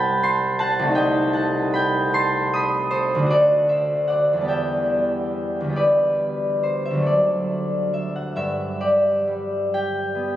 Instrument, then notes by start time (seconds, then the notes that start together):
harp
Already playing: C2 G3 C4 E4 C5 E5 F#5 G5 A5 B5
0.23 A5 C6
0.59 F#5 A5
0.79 C2 A3
0.87 D#4
0.91 G4 G5
0.96 D#5
1.33 F#5 A5
1.74 G5 B5
2.14 A5 C6
2.53 B5 D#6
2.91 A4 C5
3.15 D2
3.19 A3 D4
3.26 F#4
3.30 A4 D5
3.69 C5 E5
4.08 D5 F#5
4.33 E2 G3
4.41 B3 A5
4.45 G4 G5
4.50 E5
5.61 D2
5.65 G3
5.69 B3 G4
5.76 B4 D5
6.63 C5
6.86 E5
6.90 D2
6.95 F#3
6.99 A3 A4
7.06 D5
7.94 E5
8.16 F#5
8.36 G2 E5
8.80 G4 D5
9.27 G3
9.74 G4 G5
10.15 B3